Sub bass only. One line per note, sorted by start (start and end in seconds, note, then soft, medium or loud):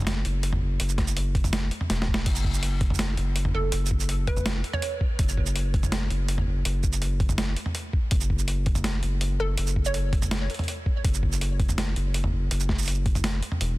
0.00 0.24 F#1 loud
0.25 0.61 F#1 loud
0.62 0.79 F#1 loud
0.80 1.70 F#1 loud
1.90 2.25 E1 loud
2.26 3.17 F#1 loud
3.18 3.53 F#1 loud
3.54 3.71 F#1 loud
3.73 4.63 F#1 loud
5.19 6.09 F#1 loud
6.11 6.46 F#1 loud
6.47 6.64 F#1 loud
6.65 7.55 F#1 loud
8.12 9.02 F#1 loud
9.03 9.39 F#1 loud
9.40 9.57 F#1 medium
9.58 10.48 F#1 loud
11.05 11.95 F#1 loud
11.96 12.32 F#1 loud
12.33 12.49 F#1 loud
12.51 13.41 F#1 loud
13.61 13.78 E1 loud